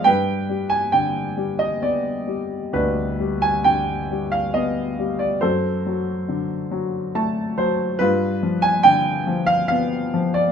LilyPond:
<<
  \new Staff \with { instrumentName = "Grand piano" } { \time 3/4 \key g \phrygian \tempo 4 = 69 << { g''8. aes''16 g''8. ees''16 d''4 | b'8. aes''16 g''8. f''16 ees''8. d''16 | c''2~ c''8 r8 | b'8. aes''16 g''8. f''16 f''8. d''16 | } \\ { b'4. r4. | d'4. r4. | a'2~ a'8 r8 | f'4. r4. | } >> }
  \new Staff \with { instrumentName = "Grand piano" } { \clef bass \time 3/4 \key g \phrygian g,8 g8 d8 g8 b8 g8 | d,8 g8 d8 g8 b8 g8 | fis,8 fis8 d8 fis8 <a a''>8 <fis c''>8 | g,8 f8 d8 f8 b8 f8 | }
>>